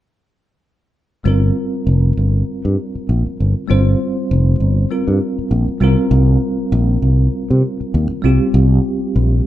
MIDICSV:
0, 0, Header, 1, 4, 480
1, 0, Start_track
1, 0, Key_signature, -2, "minor"
1, 0, Tempo, 607903
1, 996, Time_signature, 4, 2, 24, 8
1, 7476, End_track
2, 0, Start_track
2, 0, Title_t, "Tine electric piano"
2, 0, Program_c, 0, 4
2, 981, Note_on_c, 0, 55, 48
2, 988, Note_on_c, 0, 60, 46
2, 998, Note_on_c, 0, 65, 46
2, 1008, Note_on_c, 0, 70, 54
2, 2877, Note_off_c, 0, 55, 0
2, 2880, Note_off_c, 0, 60, 0
2, 2885, Note_off_c, 0, 65, 0
2, 2890, Note_off_c, 0, 70, 0
2, 2902, Note_on_c, 0, 55, 55
2, 2911, Note_on_c, 0, 60, 49
2, 2920, Note_on_c, 0, 65, 50
2, 2928, Note_on_c, 0, 72, 62
2, 3849, Note_off_c, 0, 55, 0
2, 3853, Note_off_c, 0, 60, 0
2, 3858, Note_off_c, 0, 65, 0
2, 3863, Note_off_c, 0, 72, 0
2, 3874, Note_on_c, 0, 55, 42
2, 3877, Note_on_c, 0, 60, 39
2, 3882, Note_on_c, 0, 65, 40
2, 3882, Note_on_c, 0, 70, 47
2, 4573, Note_off_c, 0, 55, 0
2, 4581, Note_off_c, 0, 60, 0
2, 4583, Note_on_c, 0, 55, 57
2, 4589, Note_off_c, 0, 65, 0
2, 4591, Note_on_c, 0, 60, 55
2, 4598, Note_on_c, 0, 65, 55
2, 4599, Note_off_c, 0, 70, 0
2, 4609, Note_on_c, 0, 70, 64
2, 6476, Note_off_c, 0, 55, 0
2, 6480, Note_off_c, 0, 60, 0
2, 6484, Note_off_c, 0, 65, 0
2, 6489, Note_off_c, 0, 70, 0
2, 6493, Note_on_c, 0, 55, 59
2, 6505, Note_on_c, 0, 60, 56
2, 6511, Note_on_c, 0, 65, 51
2, 6519, Note_on_c, 0, 67, 66
2, 7476, Note_off_c, 0, 55, 0
2, 7476, Note_off_c, 0, 60, 0
2, 7476, Note_off_c, 0, 65, 0
2, 7476, Note_off_c, 0, 67, 0
2, 7476, End_track
3, 0, Start_track
3, 0, Title_t, "Fretless electric bass"
3, 0, Program_c, 1, 35
3, 991, Note_on_c, 1, 31, 80
3, 1181, Note_off_c, 1, 31, 0
3, 1474, Note_on_c, 1, 29, 77
3, 1663, Note_off_c, 1, 29, 0
3, 1716, Note_on_c, 1, 31, 65
3, 1905, Note_off_c, 1, 31, 0
3, 2091, Note_on_c, 1, 43, 66
3, 2174, Note_off_c, 1, 43, 0
3, 2440, Note_on_c, 1, 34, 68
3, 2543, Note_off_c, 1, 34, 0
3, 2687, Note_on_c, 1, 31, 64
3, 2787, Note_off_c, 1, 31, 0
3, 2925, Note_on_c, 1, 31, 84
3, 3109, Note_off_c, 1, 31, 0
3, 3404, Note_on_c, 1, 29, 78
3, 3589, Note_off_c, 1, 29, 0
3, 3634, Note_on_c, 1, 31, 60
3, 3823, Note_off_c, 1, 31, 0
3, 4008, Note_on_c, 1, 43, 60
3, 4092, Note_off_c, 1, 43, 0
3, 4350, Note_on_c, 1, 34, 74
3, 4456, Note_off_c, 1, 34, 0
3, 4585, Note_on_c, 1, 36, 70
3, 4693, Note_off_c, 1, 36, 0
3, 4824, Note_on_c, 1, 36, 87
3, 5016, Note_off_c, 1, 36, 0
3, 5307, Note_on_c, 1, 34, 84
3, 5498, Note_off_c, 1, 34, 0
3, 5545, Note_on_c, 1, 36, 69
3, 5737, Note_off_c, 1, 36, 0
3, 5926, Note_on_c, 1, 48, 64
3, 6010, Note_off_c, 1, 48, 0
3, 6271, Note_on_c, 1, 39, 75
3, 6376, Note_off_c, 1, 39, 0
3, 6507, Note_on_c, 1, 36, 68
3, 6614, Note_off_c, 1, 36, 0
3, 6743, Note_on_c, 1, 36, 90
3, 6935, Note_off_c, 1, 36, 0
3, 7229, Note_on_c, 1, 34, 81
3, 7419, Note_off_c, 1, 34, 0
3, 7476, End_track
4, 0, Start_track
4, 0, Title_t, "Muted fretless electric bass strokes"
4, 2333, Note_on_c, 9, 29, 29
4, 2412, Note_off_c, 9, 29, 0
4, 2576, Note_on_c, 9, 29, 26
4, 2655, Note_off_c, 9, 29, 0
4, 4252, Note_on_c, 9, 29, 27
4, 4331, Note_off_c, 9, 29, 0
4, 4484, Note_on_c, 9, 29, 30
4, 4563, Note_off_c, 9, 29, 0
4, 6164, Note_on_c, 9, 29, 29
4, 6243, Note_off_c, 9, 29, 0
4, 6405, Note_on_c, 9, 29, 29
4, 6484, Note_off_c, 9, 29, 0
4, 7476, End_track
0, 0, End_of_file